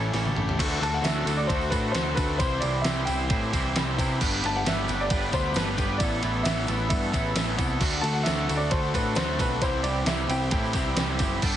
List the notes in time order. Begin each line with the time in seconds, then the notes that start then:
Already playing: A1 A2 E3 G3 A3 C#4 E4 A4 E5 G5 C#6
0.13 A1 A2 E3 G3 C#4 E4 G4 A4, snare, open hi-hat
0.25 high tom
0.35 A1 A3, mid tom
0.49 floor tom
0.58 D2 D3 A3 C4 D4 F#4 A4 F#5 C6 D6, kick, crash, ride, tambourine
0.81 D2 D3 A3 C4 D4 F#4 A4 A5, ride
0.94 F#5
1.02 D2 D3 A3 C4 D4 F#4 A4 E5, snare, ride, tambourine
1.16 tambourine
1.25 D2 D3 A3 C4 D4 F#4 A4, ride, tambourine
1.37 D5, tambourine
1.47 D2 D3 A3 C4 D4 F#4 A4 C5, kick, ride
1.61 tambourine
1.70 A2 D3 A3 C4 D4 F#4 A4 B4, kick, ride, tambourine
1.92 D2 D3 A3 C4 D4 F#4 A4 C5, snare, ride, tambourine
2.06 tambourine
2.15 D2 D3 A3 C4 D4 F#4 A4 B4, kick, ride, tambourine
2.38 C2 C3 E3 G3 C4 E4 G4 C5 E5 E6, kick, ride, tambourine
2.60 C2 C3 E3 G3 C4 E4 C5 D5, ride
2.64 G4
2.81 C2 C3 E3 G3 C4 E4 C5 E5, snare, ride
2.86 G4, tambourine
2.97 tambourine
3.05 C2 C3 E3 G3 C4 E4 G4 C5 G5, ride, tambourine
3.20 tambourine
3.27 A2 C3 E3 G3 C4 E4 C5, kick, ride
3.33 G4
3.43 tambourine
3.51 C2 C3 E3 G3 C4 E4 C5, kick, ride, tambourine
3.56 G4
3.76 C2 C3 E3 G3 C4 E4 G4 C5, snare, ride, tambourine
3.88 tambourine
3.98 C3 E3 G3 C4 E4 G4 C5, kick, ride, tambourine
4.19 G1 G3 A3 B3 D4 G4 A4 B4 G5 B5 D6, kick, tambourine, crash
4.42 G1 G3 A3 B3 D4 G4 B4 A5, ride
4.56 F#5
4.65 G1 G3 A3 B3 D4 G4 B4 E5, snare, ride, tambourine
4.87 G1 G3 A3 B3 D4 G4 B4, ride, tambourine
5.00 D5, tambourine
5.10 G1 G3 A3 B3 D4 G4 B4, kick, ride
5.22 tambourine
5.31 D2 G3 A3 B3 D4 G4 B4 C5, kick, ride, tambourine
5.54 G1 G3 A3 B3 D4 G4 B4, snare, ride, tambourine
5.67 tambourine
5.77 G1 G3 B3 D4, kick, ride, tambourine
5.81 A3 G4 B4
5.98 A1 E3 A3 B3 D5, kick, ride, tambourine
6.02 E4 A4 E5 E6
6.22 A1 E3 A3 B3 E4 A4, ride, tambourine
6.33 tambourine
6.43 A1 E3 A3 B3 E4 A4 E5, snare, ride, tambourine
6.56 tambourine
6.67 A1 E3 A3 B3 E4 A4, ride, tambourine
6.79 tambourine
6.89 G2 E3 A3 B3 E4 A4 E5, kick, ride, tambourine
7.03 tambourine
7.11 A1 E3 A3 B3 E4 A4, kick, ride, tambourine
7.25 tambourine
7.36 A1 E3 A3 B3 E4 A4, snare, ride, tambourine
7.56 C2 E3 A3 B3 E4 A4, kick, ride, tambourine
7.70 tambourine
7.80 D2 D3 A3 C4 D4 F#4 A4 F#5 C6 D6, kick, tambourine, crash
8.01 D2 D3 A3 C4 D4 F#4 A4 A5, ride
8.13 F#5
8.23 D2 D3 A3 C4 D4 F#4 A4 E5, snare, ride, tambourine
8.39 tambourine
8.47 D2 D3 A3 C4 D4 F#4 A4, ride, tambourine
8.57 D5
8.61 tambourine
8.70 D2 D3 A3 C4 D4 F#4 A4 C5, kick, ride
8.83 tambourine
8.93 A2 D3 A3 C4 D4 F#4 A4 B4, kick, ride, tambourine
9.15 D2 D3 A3 C4 D4 F#4 A4 C5, snare, ride, tambourine
9.39 B1 D3 A3 C4 D4 F#4 A4 B4, kick, ride, tambourine
9.60 C2 C3 E3 G3 C4 E4 G4 C5 E5 E6, kick, ride, tambourine
9.83 C2 C3 E3 G3 C4 E4 G4 D5, ride
10.05 C2 C3 E3 G3 C4 E4 G4 E5, snare, ride, tambourine
10.20 tambourine
10.28 C2 C3 E3 G3 C4 E4 G4 G5, ride, tambourine
10.42 tambourine
10.51 A2 C3 E3 G3 C4 E4 G4, kick, ride
10.64 tambourine
10.73 C2 C3 E3 G3 C4 E4 G4, kick, ride, tambourine
10.96 C2 C3 E3 G3 C4 E4 G4, snare, ride, tambourine
11.09 tambourine
11.19 F#1 C3 E3 G3 C4 E4 G4, kick, ride, tambourine
11.41 G1 G3 B3 D4 A4 G5 B5 D6, kick, tambourine, crash
11.45 G4